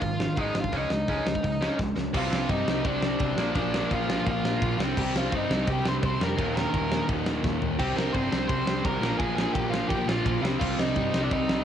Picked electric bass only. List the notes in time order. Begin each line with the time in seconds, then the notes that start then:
0.01 G#1
0.37 G#1
0.54 G#1
0.72 C#2
0.90 C#2
1.08 C#2
1.25 C#2
1.44 C#2
1.79 C#2
1.96 C#2
2.14 C2
2.30 C2
2.49 G2
2.66 C2
2.85 C2
3.01 C2
3.20 C2
3.37 A#1
3.55 A#1
3.91 A#1
4.26 A#1
4.44 A#1
4.62 A#1
4.78 C2
4.97 C2
5.14 C2
5.32 G2
5.49 C2
5.67 C2
5.85 C2
6.02 C2
6.20 F2
6.38 D#1
6.73 D#1
7.08 D#1
7.26 D#1
7.44 D#1
7.61 D#1
7.79 C2
7.95 C2
8.14 G1
8.31 C2
8.49 C2
8.66 C2
8.85 C2
9.00 A#1
9.19 A#1
9.55 A#1
9.90 A#1
10.06 A#1
10.26 A#1
10.42 C2
10.61 C2
10.96 G2
11.15 C2
11.31 C2
11.49 C2